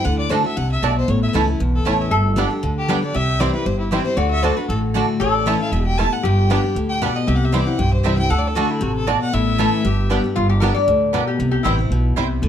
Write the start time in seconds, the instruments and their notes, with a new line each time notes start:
0.05 upright bass D2, steel-string acoustic guitar D3, fiddle F#5
0.19 fiddle D5
0.29 steel-string acoustic guitar D3 A3 D4 F#4, mandolin A3 F#4 D5 A5, five-string banjo A3 D4, fiddle C5
0.44 steel-string acoustic guitar D4 F#4, fiddle E5
0.57 upright bass C2, steel-string acoustic guitar C3, fiddle F#5
0.72 fiddle E5
0.82 upright bass B1, steel-string acoustic guitar B2, mandolin A3 F#4 D5 A5, five-string banjo A3 D4, fiddle D5
0.98 fiddle C5
1.08 upright bass A1, steel-string acoustic guitar A2, fiddle C#5
1.23 fiddle E5
1.33 upright bass C#2, steel-string acoustic guitar E3 A3 C#4 E4, mandolin A3 E4 C#5 A5, five-string banjo A3 C#4 E4
1.47 steel-string acoustic guitar C#4 E4
1.60 upright bass B1, steel-string acoustic guitar E2
1.75 fiddle A4
1.85 upright bass A1, steel-string acoustic guitar E3 A3 C#4 E4, mandolin A3 E4 C#5 A5, five-string banjo A3 C#4 E4, fiddle C#5
2.01 fiddle E5
2.11 upright bass G1, steel-string acoustic guitar G2, resonator guitar played with a steel bar A4
2.36 steel-string acoustic guitar G3 B3 D4 G4, five-string banjo G3 B3 D4, mandolin B3 G4 D5 G5
2.51 steel-string acoustic guitar D4 G4
2.63 upright bass D2, steel-string acoustic guitar D3
2.78 fiddle G4
2.88 steel-string acoustic guitar G3 B3 D4 G4, five-string banjo G3 B3 D4, mandolin B3 G4 D5 G5, fiddle B4
3.03 steel-string acoustic guitar D4 G4, fiddle D5
3.14 upright bass C2, steel-string acoustic guitar C3, resonator guitar played with a steel bar G4, fiddle E5
3.40 steel-string acoustic guitar E3 G3 C4 E4, five-string banjo G3 C4 E4, mandolin C4 E4 C5 G5, fiddle D5
3.54 steel-string acoustic guitar C4 E4, fiddle B4
3.66 upright bass G1, steel-string acoustic guitar G2, fiddle C5
3.80 fiddle E4
3.91 steel-string acoustic guitar E3 G3 C4 E4, five-string banjo G3 C4 E4, mandolin C4 E4 C5 G5, fiddle G4
4.04 steel-string acoustic guitar C4 E4, fiddle C5
4.17 upright bass D2, steel-string acoustic guitar D3, resonator guitar played with a steel bar F#4, fiddle D5
4.31 fiddle E5
4.43 steel-string acoustic guitar D3 A3 D4 F#4, mandolin A3 F#4 D5 A5, five-string banjo A3 D4, fiddle C5
4.56 steel-string acoustic guitar D4 F#4, fiddle B4
4.68 upright bass A1, steel-string acoustic guitar A2, fiddle A4
4.94 steel-string acoustic guitar D3 A3 D4 F#4, mandolin A3 F#4 D5 A5, five-string banjo A3 D4
5.20 upright bass A1, steel-string acoustic guitar A2, resonator guitar played with a steel bar A4, fiddle C#5
5.35 fiddle D5
5.46 steel-string acoustic guitar E3 A3 C#4 E4, mandolin A3 E4 C#5 A5, five-string banjo A3 C#4 E4, fiddle E5
5.60 steel-string acoustic guitar C#4 E4, fiddle F5
5.72 upright bass E1, steel-string acoustic guitar B2, fiddle E5
5.83 resonator guitar played with a steel bar G4, fiddle G5
5.98 steel-string acoustic guitar A2, mandolin A3 E4 C#5 A5, five-string banjo A3 C#4 E4, fiddle A5
6.13 fiddle F#5
6.23 upright bass G1, steel-string acoustic guitar G2, resonator guitar played with a steel bar G4, fiddle G5
6.50 steel-string acoustic guitar G3 B3 D4 G4, five-string banjo G3 B3 D4, mandolin B3 G4 D5 G5
6.64 steel-string acoustic guitar D4 G4
6.75 upright bass D2, steel-string acoustic guitar A2
6.89 fiddle G5
7.02 steel-string acoustic guitar B2, five-string banjo G3 B3 D4, mandolin B3 G4 D5 G5, fiddle F#5
7.16 fiddle D#5
7.27 upright bass C2, steel-string acoustic guitar C3, resonator guitar played with a steel bar G4, fiddle E5
7.36 fiddle F#5
7.45 fiddle E5
7.52 steel-string acoustic guitar E3 G3 C4 E4, five-string banjo G3 C4 E4, mandolin C4 E4 C5 G5, fiddle D5
7.67 steel-string acoustic guitar C4 E4, fiddle F#5
7.79 upright bass B1, steel-string acoustic guitar G2, fiddle G5
7.93 fiddle C5
8.03 upright bass C2, steel-string acoustic guitar E3 G3 C4 E4, five-string banjo G3 C4 E4, mandolin C4 E4 C5 G5, fiddle E5
8.18 steel-string acoustic guitar C4 E4, fiddle G5
8.30 upright bass D2, steel-string acoustic guitar D3, resonator guitar played with a steel bar A4, fiddle F#5
8.38 fiddle D5
8.47 fiddle A4
8.55 steel-string acoustic guitar D3 A3 D4 F#4, mandolin A3 F#4 D5 A5, five-string banjo A3 D4, fiddle F#4
8.70 fiddle E4
8.81 upright bass A1, steel-string acoustic guitar C3, fiddle F#4
8.96 fiddle A4
9.07 steel-string acoustic guitar B2, mandolin A3 F#4 D5 A5, five-string banjo A3 D4, fiddle D5
9.21 fiddle F#5
9.33 upright bass A1, steel-string acoustic guitar A2, resonator guitar played with a steel bar E4, fiddle E5
9.58 steel-string acoustic guitar E3 A3 C#4 E4, mandolin A3 E4 C#5 A5, five-string banjo A3 C#4 E4
9.85 upright bass G1, steel-string acoustic guitar G2, resonator guitar played with a steel bar G4
10.10 steel-string acoustic guitar G3 B3 D4 G4, five-string banjo G3 B3 D4, mandolin B3 G4 D5 G5
10.24 steel-string acoustic guitar D4 G4
10.36 upright bass G1, steel-string acoustic guitar G2, resonator guitar played with a steel bar F4
10.49 resonator guitar played with a steel bar G4
10.60 steel-string acoustic guitar G3 B3 D4 G4, five-string banjo G3 B3 D4, mandolin B3 G4 D5 G5, resonator guitar played with a steel bar A#4
10.74 steel-string acoustic guitar D4 G4, resonator guitar played with a steel bar D5
10.87 upright bass D2, steel-string acoustic guitar A2
11.13 steel-string acoustic guitar B2, five-string banjo G3 B3 D4, mandolin B3 G4 D5 G5, resonator guitar played with a steel bar A#4
11.27 resonator guitar played with a steel bar G4
11.39 upright bass C2, steel-string acoustic guitar C3
11.51 resonator guitar played with a steel bar G4
11.63 upright bass A1, steel-string acoustic guitar E3 G3 C4 E4, five-string banjo G3 C4 E4, mandolin C4 E4 C5 G5, resonator guitar played with a steel bar E4
11.79 steel-string acoustic guitar C4 E4
11.90 upright bass B1, steel-string acoustic guitar B2
12.16 upright bass C2, steel-string acoustic guitar C3, five-string banjo G3 C4 E4, mandolin C4 E4 C5 G5
12.42 upright bass D2, steel-string acoustic guitar D3